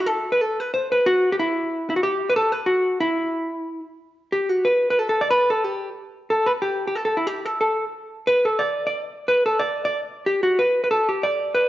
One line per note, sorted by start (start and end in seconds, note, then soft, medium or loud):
0.06 0.32 A4 loud
0.32 0.41 B4 medium
0.41 0.60 A4 medium
0.60 0.73 B4 medium
0.74 0.91 C5 medium
0.92 1.06 B4 medium
1.06 1.31 F#4 loud
1.32 1.35 G4 medium
1.39 1.89 E4 medium
1.90 1.96 E4 medium
1.96 2.03 F#4 medium
2.03 2.28 G4 medium
2.29 2.35 B4 medium
2.36 2.52 A4 loud
2.52 2.68 B4 medium
2.66 3.00 F#4 medium
3.00 3.80 E4 medium
4.32 4.49 G4 medium
4.49 4.65 F#4 medium
4.65 4.89 B4 medium
4.90 4.99 B4 medium
4.99 5.08 A4 medium
5.09 5.20 A4 medium
5.21 5.30 D5 medium
5.30 5.48 B4 loud
5.50 5.64 A4 medium
5.64 5.89 G4 medium
6.30 6.47 A4 loud
6.46 6.51 B4 medium
6.62 6.86 G4 medium
6.87 6.95 G4 medium
6.95 7.04 A4 medium
7.05 7.16 A4 medium
7.17 7.27 E4 medium
7.27 7.46 G4 medium
7.46 7.59 A4 medium
7.61 7.84 A4 medium
8.27 8.45 B4 loud
8.45 8.61 A4 medium
8.59 8.85 D5 medium
8.87 9.01 D5 medium
9.28 9.45 B4 medium
9.46 9.60 A4 medium
9.60 9.84 D5 medium
9.85 10.00 D5 medium
10.26 10.43 G4 medium
10.43 10.58 F#4 medium
10.59 10.83 B4 medium
10.84 10.91 B4 medium
10.91 11.09 A4 medium
11.09 11.24 G4 medium
11.23 11.69 D5 medium
11.54 11.69 B4 medium